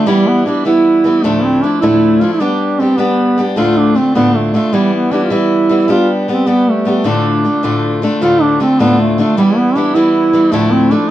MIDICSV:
0, 0, Header, 1, 3, 480
1, 0, Start_track
1, 0, Tempo, 387347
1, 79, Time_signature, 6, 3, 24, 8
1, 13764, End_track
2, 0, Start_track
2, 0, Title_t, "Duduk"
2, 0, Program_c, 0, 69
2, 88, Note_on_c, 0, 55, 94
2, 346, Note_on_c, 0, 59, 85
2, 364, Note_off_c, 0, 55, 0
2, 566, Note_off_c, 0, 59, 0
2, 573, Note_on_c, 0, 62, 76
2, 789, Note_off_c, 0, 62, 0
2, 814, Note_on_c, 0, 64, 109
2, 1530, Note_on_c, 0, 57, 88
2, 1548, Note_off_c, 0, 64, 0
2, 1789, Note_on_c, 0, 60, 86
2, 1808, Note_off_c, 0, 57, 0
2, 2021, Note_on_c, 0, 62, 81
2, 2040, Note_off_c, 0, 60, 0
2, 2238, Note_off_c, 0, 62, 0
2, 2245, Note_on_c, 0, 64, 109
2, 2739, Note_on_c, 0, 65, 88
2, 2758, Note_off_c, 0, 64, 0
2, 2883, Note_off_c, 0, 65, 0
2, 2891, Note_on_c, 0, 64, 71
2, 2977, Note_on_c, 0, 62, 96
2, 2995, Note_off_c, 0, 64, 0
2, 3463, Note_on_c, 0, 60, 78
2, 3481, Note_off_c, 0, 62, 0
2, 3702, Note_on_c, 0, 59, 100
2, 3721, Note_off_c, 0, 60, 0
2, 4247, Note_off_c, 0, 59, 0
2, 4413, Note_on_c, 0, 65, 91
2, 4680, Note_on_c, 0, 62, 78
2, 4698, Note_off_c, 0, 65, 0
2, 4908, Note_on_c, 0, 60, 76
2, 4927, Note_off_c, 0, 62, 0
2, 5135, Note_off_c, 0, 60, 0
2, 5142, Note_on_c, 0, 59, 104
2, 5398, Note_on_c, 0, 57, 75
2, 5416, Note_off_c, 0, 59, 0
2, 5615, Note_off_c, 0, 57, 0
2, 5623, Note_on_c, 0, 57, 78
2, 5859, Note_on_c, 0, 55, 75
2, 5878, Note_off_c, 0, 57, 0
2, 6111, Note_off_c, 0, 55, 0
2, 6118, Note_on_c, 0, 59, 71
2, 6347, Note_on_c, 0, 62, 69
2, 6366, Note_off_c, 0, 59, 0
2, 6485, Note_off_c, 0, 62, 0
2, 6493, Note_on_c, 0, 65, 57
2, 6584, Note_on_c, 0, 64, 108
2, 6602, Note_off_c, 0, 65, 0
2, 7303, Note_off_c, 0, 64, 0
2, 7319, Note_on_c, 0, 65, 97
2, 7549, Note_off_c, 0, 65, 0
2, 7822, Note_on_c, 0, 60, 74
2, 8043, Note_on_c, 0, 59, 90
2, 8062, Note_off_c, 0, 60, 0
2, 8303, Note_on_c, 0, 57, 71
2, 8322, Note_off_c, 0, 59, 0
2, 8770, Note_on_c, 0, 62, 85
2, 8789, Note_off_c, 0, 57, 0
2, 9961, Note_off_c, 0, 62, 0
2, 10180, Note_on_c, 0, 65, 109
2, 10429, Note_on_c, 0, 62, 100
2, 10448, Note_off_c, 0, 65, 0
2, 10662, Note_off_c, 0, 62, 0
2, 10675, Note_on_c, 0, 60, 94
2, 10912, Note_on_c, 0, 59, 118
2, 10931, Note_off_c, 0, 60, 0
2, 11153, Note_off_c, 0, 59, 0
2, 11160, Note_on_c, 0, 57, 78
2, 11371, Note_off_c, 0, 57, 0
2, 11393, Note_on_c, 0, 57, 90
2, 11603, Note_off_c, 0, 57, 0
2, 11619, Note_on_c, 0, 55, 82
2, 11860, Note_on_c, 0, 59, 88
2, 11879, Note_off_c, 0, 55, 0
2, 12099, Note_on_c, 0, 62, 90
2, 12118, Note_off_c, 0, 59, 0
2, 12326, Note_on_c, 0, 64, 108
2, 12344, Note_off_c, 0, 62, 0
2, 13037, Note_on_c, 0, 57, 93
2, 13055, Note_off_c, 0, 64, 0
2, 13296, Note_on_c, 0, 60, 82
2, 13315, Note_off_c, 0, 57, 0
2, 13525, Note_on_c, 0, 62, 90
2, 13544, Note_off_c, 0, 60, 0
2, 13764, Note_off_c, 0, 62, 0
2, 13764, End_track
3, 0, Start_track
3, 0, Title_t, "Steel-string acoustic guitar"
3, 0, Program_c, 1, 25
3, 75, Note_on_c, 1, 52, 65
3, 83, Note_on_c, 1, 55, 83
3, 90, Note_on_c, 1, 59, 71
3, 98, Note_on_c, 1, 64, 85
3, 553, Note_off_c, 1, 52, 0
3, 565, Note_off_c, 1, 55, 0
3, 568, Note_on_c, 1, 52, 51
3, 575, Note_off_c, 1, 59, 0
3, 580, Note_off_c, 1, 64, 0
3, 580, Note_on_c, 1, 55, 50
3, 591, Note_on_c, 1, 59, 54
3, 601, Note_on_c, 1, 64, 62
3, 790, Note_off_c, 1, 52, 0
3, 798, Note_off_c, 1, 55, 0
3, 805, Note_on_c, 1, 52, 56
3, 806, Note_off_c, 1, 59, 0
3, 810, Note_off_c, 1, 64, 0
3, 813, Note_on_c, 1, 55, 58
3, 821, Note_on_c, 1, 59, 67
3, 825, Note_on_c, 1, 64, 58
3, 1274, Note_off_c, 1, 52, 0
3, 1289, Note_on_c, 1, 52, 60
3, 1290, Note_off_c, 1, 55, 0
3, 1303, Note_off_c, 1, 59, 0
3, 1305, Note_off_c, 1, 64, 0
3, 1305, Note_on_c, 1, 55, 54
3, 1315, Note_on_c, 1, 59, 60
3, 1325, Note_on_c, 1, 64, 59
3, 1525, Note_off_c, 1, 52, 0
3, 1532, Note_on_c, 1, 38, 59
3, 1533, Note_off_c, 1, 55, 0
3, 1538, Note_off_c, 1, 59, 0
3, 1538, Note_on_c, 1, 45, 71
3, 1538, Note_on_c, 1, 53, 70
3, 1543, Note_off_c, 1, 64, 0
3, 1546, Note_on_c, 1, 57, 74
3, 1549, Note_on_c, 1, 62, 79
3, 1557, Note_on_c, 1, 64, 79
3, 2007, Note_off_c, 1, 53, 0
3, 2016, Note_off_c, 1, 57, 0
3, 2020, Note_off_c, 1, 38, 0
3, 2022, Note_on_c, 1, 53, 49
3, 2023, Note_off_c, 1, 45, 0
3, 2031, Note_on_c, 1, 57, 57
3, 2032, Note_off_c, 1, 64, 0
3, 2039, Note_off_c, 1, 62, 0
3, 2044, Note_on_c, 1, 62, 55
3, 2050, Note_on_c, 1, 64, 63
3, 2253, Note_off_c, 1, 53, 0
3, 2256, Note_on_c, 1, 38, 59
3, 2258, Note_off_c, 1, 57, 0
3, 2258, Note_off_c, 1, 62, 0
3, 2261, Note_on_c, 1, 45, 67
3, 2263, Note_off_c, 1, 64, 0
3, 2267, Note_on_c, 1, 53, 60
3, 2272, Note_on_c, 1, 57, 71
3, 2273, Note_on_c, 1, 62, 61
3, 2278, Note_on_c, 1, 64, 70
3, 2726, Note_off_c, 1, 53, 0
3, 2741, Note_off_c, 1, 57, 0
3, 2741, Note_on_c, 1, 53, 58
3, 2743, Note_off_c, 1, 38, 0
3, 2746, Note_off_c, 1, 45, 0
3, 2754, Note_off_c, 1, 64, 0
3, 2756, Note_on_c, 1, 57, 57
3, 2757, Note_off_c, 1, 62, 0
3, 2762, Note_on_c, 1, 62, 54
3, 2772, Note_on_c, 1, 64, 63
3, 2971, Note_off_c, 1, 53, 0
3, 2976, Note_on_c, 1, 55, 68
3, 2977, Note_off_c, 1, 62, 0
3, 2978, Note_off_c, 1, 57, 0
3, 2983, Note_on_c, 1, 59, 62
3, 2989, Note_off_c, 1, 64, 0
3, 2991, Note_on_c, 1, 62, 68
3, 2996, Note_on_c, 1, 67, 76
3, 3450, Note_off_c, 1, 55, 0
3, 3459, Note_off_c, 1, 59, 0
3, 3465, Note_on_c, 1, 55, 48
3, 3472, Note_off_c, 1, 62, 0
3, 3473, Note_on_c, 1, 59, 49
3, 3474, Note_off_c, 1, 67, 0
3, 3485, Note_on_c, 1, 62, 57
3, 3496, Note_on_c, 1, 67, 55
3, 3675, Note_off_c, 1, 55, 0
3, 3685, Note_off_c, 1, 59, 0
3, 3690, Note_on_c, 1, 55, 57
3, 3692, Note_off_c, 1, 62, 0
3, 3699, Note_off_c, 1, 67, 0
3, 3700, Note_on_c, 1, 59, 66
3, 3706, Note_on_c, 1, 62, 76
3, 3714, Note_on_c, 1, 67, 70
3, 4169, Note_off_c, 1, 55, 0
3, 4184, Note_off_c, 1, 59, 0
3, 4184, Note_on_c, 1, 55, 59
3, 4190, Note_off_c, 1, 62, 0
3, 4194, Note_off_c, 1, 67, 0
3, 4199, Note_on_c, 1, 59, 60
3, 4207, Note_on_c, 1, 62, 62
3, 4218, Note_on_c, 1, 67, 62
3, 4411, Note_on_c, 1, 38, 67
3, 4412, Note_off_c, 1, 62, 0
3, 4414, Note_on_c, 1, 45, 65
3, 4417, Note_off_c, 1, 55, 0
3, 4421, Note_off_c, 1, 59, 0
3, 4422, Note_on_c, 1, 50, 66
3, 4426, Note_on_c, 1, 57, 73
3, 4427, Note_on_c, 1, 62, 76
3, 4430, Note_off_c, 1, 67, 0
3, 4435, Note_on_c, 1, 65, 76
3, 4879, Note_off_c, 1, 50, 0
3, 4893, Note_off_c, 1, 57, 0
3, 4894, Note_on_c, 1, 50, 47
3, 4903, Note_off_c, 1, 62, 0
3, 4904, Note_off_c, 1, 38, 0
3, 4905, Note_off_c, 1, 45, 0
3, 4908, Note_on_c, 1, 57, 50
3, 4915, Note_off_c, 1, 65, 0
3, 4918, Note_on_c, 1, 62, 53
3, 4928, Note_on_c, 1, 65, 60
3, 5133, Note_off_c, 1, 50, 0
3, 5137, Note_off_c, 1, 57, 0
3, 5144, Note_on_c, 1, 38, 55
3, 5145, Note_off_c, 1, 62, 0
3, 5147, Note_on_c, 1, 45, 60
3, 5150, Note_off_c, 1, 65, 0
3, 5152, Note_on_c, 1, 57, 65
3, 5154, Note_on_c, 1, 50, 57
3, 5158, Note_on_c, 1, 62, 73
3, 5165, Note_on_c, 1, 65, 69
3, 5608, Note_off_c, 1, 50, 0
3, 5621, Note_off_c, 1, 57, 0
3, 5623, Note_on_c, 1, 50, 52
3, 5631, Note_off_c, 1, 38, 0
3, 5632, Note_off_c, 1, 45, 0
3, 5632, Note_off_c, 1, 62, 0
3, 5636, Note_on_c, 1, 57, 64
3, 5641, Note_off_c, 1, 65, 0
3, 5647, Note_on_c, 1, 62, 60
3, 5656, Note_on_c, 1, 65, 69
3, 5851, Note_off_c, 1, 50, 0
3, 5856, Note_on_c, 1, 52, 69
3, 5863, Note_off_c, 1, 57, 0
3, 5865, Note_off_c, 1, 62, 0
3, 5868, Note_on_c, 1, 55, 77
3, 5869, Note_on_c, 1, 59, 64
3, 5874, Note_off_c, 1, 65, 0
3, 5879, Note_on_c, 1, 64, 73
3, 6322, Note_off_c, 1, 52, 0
3, 6337, Note_on_c, 1, 52, 56
3, 6338, Note_off_c, 1, 55, 0
3, 6349, Note_off_c, 1, 59, 0
3, 6353, Note_on_c, 1, 55, 54
3, 6355, Note_off_c, 1, 64, 0
3, 6364, Note_on_c, 1, 59, 53
3, 6370, Note_on_c, 1, 64, 52
3, 6556, Note_off_c, 1, 52, 0
3, 6567, Note_off_c, 1, 55, 0
3, 6569, Note_off_c, 1, 59, 0
3, 6571, Note_on_c, 1, 52, 71
3, 6578, Note_off_c, 1, 64, 0
3, 6582, Note_on_c, 1, 55, 66
3, 6584, Note_on_c, 1, 59, 70
3, 6593, Note_on_c, 1, 64, 79
3, 7040, Note_off_c, 1, 52, 0
3, 7054, Note_off_c, 1, 55, 0
3, 7055, Note_on_c, 1, 52, 63
3, 7063, Note_off_c, 1, 59, 0
3, 7069, Note_on_c, 1, 55, 62
3, 7071, Note_off_c, 1, 64, 0
3, 7078, Note_on_c, 1, 59, 63
3, 7086, Note_on_c, 1, 64, 67
3, 7271, Note_off_c, 1, 55, 0
3, 7281, Note_off_c, 1, 52, 0
3, 7283, Note_off_c, 1, 59, 0
3, 7286, Note_on_c, 1, 55, 71
3, 7297, Note_on_c, 1, 59, 64
3, 7306, Note_off_c, 1, 64, 0
3, 7308, Note_on_c, 1, 62, 73
3, 7311, Note_on_c, 1, 67, 80
3, 7770, Note_off_c, 1, 55, 0
3, 7780, Note_off_c, 1, 59, 0
3, 7785, Note_on_c, 1, 55, 47
3, 7794, Note_off_c, 1, 67, 0
3, 7795, Note_on_c, 1, 59, 63
3, 7801, Note_off_c, 1, 62, 0
3, 7806, Note_on_c, 1, 62, 52
3, 7809, Note_on_c, 1, 67, 61
3, 7997, Note_off_c, 1, 55, 0
3, 8006, Note_off_c, 1, 59, 0
3, 8010, Note_off_c, 1, 62, 0
3, 8012, Note_on_c, 1, 55, 63
3, 8018, Note_off_c, 1, 67, 0
3, 8021, Note_on_c, 1, 59, 67
3, 8025, Note_on_c, 1, 62, 73
3, 8032, Note_on_c, 1, 67, 65
3, 8478, Note_off_c, 1, 55, 0
3, 8491, Note_off_c, 1, 59, 0
3, 8493, Note_on_c, 1, 55, 56
3, 8506, Note_on_c, 1, 59, 59
3, 8513, Note_off_c, 1, 62, 0
3, 8515, Note_off_c, 1, 67, 0
3, 8518, Note_on_c, 1, 62, 68
3, 8528, Note_on_c, 1, 67, 70
3, 8722, Note_on_c, 1, 38, 61
3, 8729, Note_on_c, 1, 45, 76
3, 8730, Note_off_c, 1, 62, 0
3, 8733, Note_off_c, 1, 55, 0
3, 8736, Note_off_c, 1, 59, 0
3, 8738, Note_on_c, 1, 50, 75
3, 8741, Note_off_c, 1, 67, 0
3, 8741, Note_on_c, 1, 57, 71
3, 8745, Note_on_c, 1, 62, 72
3, 8746, Note_on_c, 1, 65, 80
3, 9211, Note_off_c, 1, 50, 0
3, 9219, Note_off_c, 1, 38, 0
3, 9222, Note_off_c, 1, 45, 0
3, 9225, Note_off_c, 1, 57, 0
3, 9225, Note_on_c, 1, 50, 43
3, 9230, Note_off_c, 1, 62, 0
3, 9231, Note_off_c, 1, 65, 0
3, 9240, Note_on_c, 1, 57, 57
3, 9247, Note_on_c, 1, 62, 52
3, 9260, Note_on_c, 1, 65, 52
3, 9452, Note_off_c, 1, 50, 0
3, 9454, Note_off_c, 1, 57, 0
3, 9454, Note_on_c, 1, 38, 66
3, 9455, Note_off_c, 1, 62, 0
3, 9461, Note_on_c, 1, 45, 65
3, 9462, Note_off_c, 1, 65, 0
3, 9467, Note_on_c, 1, 50, 63
3, 9469, Note_on_c, 1, 57, 68
3, 9469, Note_on_c, 1, 62, 60
3, 9476, Note_on_c, 1, 65, 73
3, 9923, Note_off_c, 1, 50, 0
3, 9937, Note_off_c, 1, 57, 0
3, 9938, Note_on_c, 1, 50, 57
3, 9944, Note_off_c, 1, 38, 0
3, 9946, Note_off_c, 1, 62, 0
3, 9947, Note_off_c, 1, 45, 0
3, 9952, Note_on_c, 1, 57, 71
3, 9955, Note_off_c, 1, 65, 0
3, 9961, Note_on_c, 1, 62, 66
3, 9971, Note_on_c, 1, 65, 66
3, 10170, Note_off_c, 1, 50, 0
3, 10176, Note_off_c, 1, 57, 0
3, 10178, Note_on_c, 1, 38, 66
3, 10182, Note_off_c, 1, 62, 0
3, 10183, Note_on_c, 1, 45, 75
3, 10185, Note_on_c, 1, 50, 63
3, 10190, Note_off_c, 1, 65, 0
3, 10191, Note_on_c, 1, 57, 73
3, 10196, Note_on_c, 1, 62, 81
3, 10204, Note_on_c, 1, 65, 75
3, 10642, Note_off_c, 1, 50, 0
3, 10652, Note_off_c, 1, 57, 0
3, 10657, Note_on_c, 1, 50, 59
3, 10661, Note_off_c, 1, 62, 0
3, 10664, Note_off_c, 1, 38, 0
3, 10667, Note_off_c, 1, 45, 0
3, 10667, Note_on_c, 1, 57, 58
3, 10674, Note_off_c, 1, 65, 0
3, 10676, Note_on_c, 1, 62, 61
3, 10688, Note_on_c, 1, 65, 64
3, 10892, Note_off_c, 1, 50, 0
3, 10892, Note_off_c, 1, 57, 0
3, 10896, Note_on_c, 1, 38, 62
3, 10898, Note_off_c, 1, 62, 0
3, 10901, Note_off_c, 1, 65, 0
3, 10902, Note_on_c, 1, 45, 58
3, 10906, Note_on_c, 1, 50, 64
3, 10907, Note_on_c, 1, 57, 59
3, 10913, Note_on_c, 1, 62, 70
3, 10916, Note_on_c, 1, 65, 72
3, 11362, Note_off_c, 1, 50, 0
3, 11374, Note_off_c, 1, 57, 0
3, 11377, Note_on_c, 1, 50, 58
3, 11382, Note_off_c, 1, 38, 0
3, 11384, Note_off_c, 1, 62, 0
3, 11385, Note_off_c, 1, 45, 0
3, 11389, Note_on_c, 1, 57, 66
3, 11392, Note_off_c, 1, 65, 0
3, 11399, Note_on_c, 1, 62, 64
3, 11412, Note_on_c, 1, 65, 60
3, 11609, Note_off_c, 1, 50, 0
3, 11614, Note_on_c, 1, 52, 62
3, 11617, Note_off_c, 1, 57, 0
3, 11620, Note_off_c, 1, 62, 0
3, 11623, Note_on_c, 1, 55, 80
3, 11625, Note_on_c, 1, 59, 72
3, 11628, Note_off_c, 1, 65, 0
3, 11636, Note_on_c, 1, 64, 80
3, 12074, Note_off_c, 1, 52, 0
3, 12085, Note_off_c, 1, 55, 0
3, 12088, Note_on_c, 1, 52, 55
3, 12096, Note_off_c, 1, 59, 0
3, 12100, Note_on_c, 1, 55, 59
3, 12102, Note_off_c, 1, 64, 0
3, 12111, Note_on_c, 1, 59, 56
3, 12117, Note_on_c, 1, 64, 62
3, 12316, Note_off_c, 1, 52, 0
3, 12322, Note_off_c, 1, 55, 0
3, 12330, Note_off_c, 1, 59, 0
3, 12331, Note_on_c, 1, 52, 60
3, 12335, Note_off_c, 1, 64, 0
3, 12337, Note_on_c, 1, 55, 64
3, 12345, Note_on_c, 1, 59, 72
3, 12350, Note_on_c, 1, 64, 74
3, 12790, Note_off_c, 1, 52, 0
3, 12803, Note_off_c, 1, 55, 0
3, 12805, Note_on_c, 1, 52, 62
3, 12808, Note_off_c, 1, 59, 0
3, 12816, Note_off_c, 1, 64, 0
3, 12818, Note_on_c, 1, 55, 60
3, 12823, Note_on_c, 1, 59, 69
3, 12831, Note_on_c, 1, 64, 61
3, 13033, Note_on_c, 1, 38, 82
3, 13036, Note_off_c, 1, 52, 0
3, 13041, Note_off_c, 1, 64, 0
3, 13041, Note_on_c, 1, 53, 72
3, 13042, Note_on_c, 1, 45, 62
3, 13043, Note_off_c, 1, 55, 0
3, 13048, Note_on_c, 1, 57, 77
3, 13049, Note_off_c, 1, 59, 0
3, 13054, Note_on_c, 1, 62, 94
3, 13056, Note_on_c, 1, 64, 87
3, 13505, Note_off_c, 1, 53, 0
3, 13516, Note_off_c, 1, 57, 0
3, 13520, Note_on_c, 1, 53, 53
3, 13524, Note_off_c, 1, 38, 0
3, 13528, Note_off_c, 1, 45, 0
3, 13531, Note_on_c, 1, 57, 56
3, 13535, Note_off_c, 1, 64, 0
3, 13538, Note_off_c, 1, 62, 0
3, 13543, Note_on_c, 1, 62, 62
3, 13551, Note_on_c, 1, 64, 53
3, 13740, Note_off_c, 1, 53, 0
3, 13745, Note_off_c, 1, 57, 0
3, 13750, Note_off_c, 1, 62, 0
3, 13752, Note_off_c, 1, 64, 0
3, 13764, End_track
0, 0, End_of_file